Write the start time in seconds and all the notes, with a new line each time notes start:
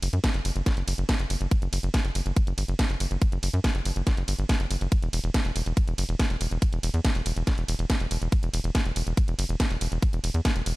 0.02 F#1, open hi-hat, ride
0.13 F#2, closed hi-hat
0.24 kick, snare, closed hi-hat, ride
0.34 F#1, closed hi-hat
0.45 F#1, open hi-hat, ride
0.56 F#1, closed hi-hat
0.66 kick, snare, closed hi-hat, ride
0.77 F#1, closed hi-hat
0.88 F#1, open hi-hat, ride
0.98 F#1, closed hi-hat
1.09 kick, snare, closed hi-hat, ride
1.19 F#1, closed hi-hat
1.30 F#1, open hi-hat, ride
1.41 F#1, closed hi-hat
1.51 kick, closed hi-hat, ride
1.62 F#1, closed hi-hat
1.73 F#1, open hi-hat, ride
1.83 F#1, closed hi-hat
1.94 kick, snare, closed hi-hat, ride
2.05 F#1, closed hi-hat
2.15 F#1, open hi-hat, ride
2.26 F#1, closed hi-hat
2.36 kick, closed hi-hat, ride
2.47 F#1, closed hi-hat
2.58 G1, open hi-hat, ride
2.68 F#1, closed hi-hat
2.79 kick, snare, closed hi-hat, ride
2.90 F#1, closed hi-hat
3.00 F#1, open hi-hat, ride
3.11 F#1, closed hi-hat
3.22 kick, closed hi-hat, ride
3.32 F#1, closed hi-hat
3.43 F#1, open hi-hat, ride
3.54 F#2, closed hi-hat
3.64 kick, snare, closed hi-hat, ride
3.75 F#1, closed hi-hat
3.85 F#1, open hi-hat, ride
3.96 F#1, closed hi-hat
4.07 kick, snare, closed hi-hat, ride
4.17 F#1, closed hi-hat
4.28 G1, open hi-hat, ride
4.39 G1, closed hi-hat
4.49 kick, snare, closed hi-hat, ride
4.60 F#1, closed hi-hat
4.71 F#1, open hi-hat, ride
4.81 F#1, closed hi-hat
4.92 kick, closed hi-hat, ride
5.02 E1, closed hi-hat
5.13 E1, open hi-hat, ride
5.24 E1, closed hi-hat
5.34 kick, snare, closed hi-hat, ride
5.45 E1, closed hi-hat
5.56 E1, open hi-hat, ride
5.66 E1, closed hi-hat
5.77 kick, closed hi-hat, ride
5.88 E1, closed hi-hat
5.98 F#1, open hi-hat, ride
6.09 E1, closed hi-hat
6.19 kick, snare, closed hi-hat, ride
6.30 E1, closed hi-hat
6.41 E1, open hi-hat, ride
6.51 E1, closed hi-hat
6.62 kick, closed hi-hat, ride
6.73 E1, closed hi-hat
6.83 E1, open hi-hat, ride
6.94 E2, closed hi-hat
7.05 kick, snare, closed hi-hat, ride
7.15 E1, closed hi-hat
7.26 E1, open hi-hat, ride
7.36 E1, closed hi-hat
7.47 kick, snare, closed hi-hat, ride
7.58 E1, closed hi-hat
7.68 E1, open hi-hat, ride
7.79 E1, closed hi-hat
7.90 kick, snare, closed hi-hat, ride
8.00 E1, closed hi-hat
8.11 E1, open hi-hat, ride
8.22 E1, closed hi-hat
8.32 kick, closed hi-hat, ride
8.43 E1, closed hi-hat
8.54 E1, open hi-hat, ride
8.64 E1, closed hi-hat
8.75 kick, snare, closed hi-hat, ride
8.85 E1, closed hi-hat
8.96 E1, open hi-hat, ride
9.07 E1, closed hi-hat
9.17 kick, closed hi-hat, ride
9.28 E1, closed hi-hat
9.39 F#1, open hi-hat, ride
9.49 E1, closed hi-hat
9.60 kick, snare, closed hi-hat, ride
9.71 E1, closed hi-hat
9.81 E1, open hi-hat, ride
9.92 E1, closed hi-hat
10.02 kick, closed hi-hat, ride
10.13 E1, closed hi-hat
10.24 E1, open hi-hat, ride
10.34 E2, closed hi-hat
10.45 kick, snare, closed hi-hat, ride
10.56 E1, closed hi-hat
10.66 E1, open hi-hat, ride